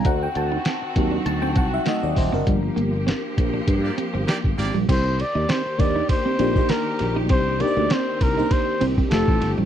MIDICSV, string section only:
0, 0, Header, 1, 2, 480
1, 0, Start_track
1, 0, Tempo, 603622
1, 43, Time_signature, 4, 2, 24, 8
1, 7676, End_track
2, 0, Start_track
2, 0, Title_t, "String section"
2, 0, Program_c, 0, 48
2, 31, Note_on_c, 0, 51, 86
2, 36, Note_on_c, 0, 60, 76
2, 37, Note_on_c, 0, 66, 92
2, 1939, Note_off_c, 0, 51, 0
2, 1941, Note_off_c, 0, 60, 0
2, 1942, Note_off_c, 0, 66, 0
2, 1960, Note_on_c, 0, 67, 90
2, 1962, Note_on_c, 0, 53, 85
2, 1963, Note_on_c, 0, 58, 75
2, 3864, Note_off_c, 0, 67, 0
2, 3865, Note_off_c, 0, 53, 0
2, 3865, Note_off_c, 0, 58, 0
2, 3890, Note_on_c, 0, 58, 76
2, 3894, Note_on_c, 0, 67, 90
2, 3898, Note_on_c, 0, 51, 83
2, 5789, Note_off_c, 0, 58, 0
2, 5803, Note_on_c, 0, 60, 75
2, 7219, Note_off_c, 0, 67, 0
2, 7220, Note_off_c, 0, 51, 0
2, 7230, Note_off_c, 0, 60, 0
2, 7257, Note_on_c, 0, 57, 72
2, 7259, Note_on_c, 0, 51, 77
2, 7262, Note_on_c, 0, 67, 90
2, 7676, Note_off_c, 0, 51, 0
2, 7676, Note_off_c, 0, 57, 0
2, 7676, Note_off_c, 0, 67, 0
2, 7676, End_track
0, 0, End_of_file